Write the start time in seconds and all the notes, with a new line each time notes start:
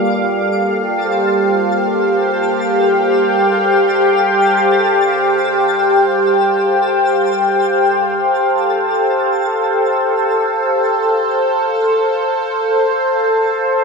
Already playing: G3 A#3 F4 A4 D5 F5 D6
0.27 A4 A5
0.66 G4
0.99 C5
2.01 G5
8.18 A4